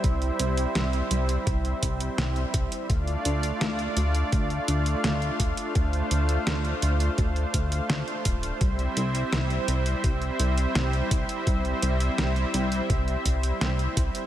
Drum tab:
HH |xxxxxxxxxxxxxxxx|xxxxxxxxxxxxxxxx|xxxxxxxxxxxxxxxx|xxxxxxxxxxxxxxxx|
SD |----o-------o---|----o-------o---|----o-------o---|----o-------o---|
BD |o-------o-o---o-|o-------o-----o-|o-------o-o---o-|o-------o-----o-|

HH |xxxxxxxxxxxxxxxx|
SD |----o-------o---|
BD |o-------o-o---o-|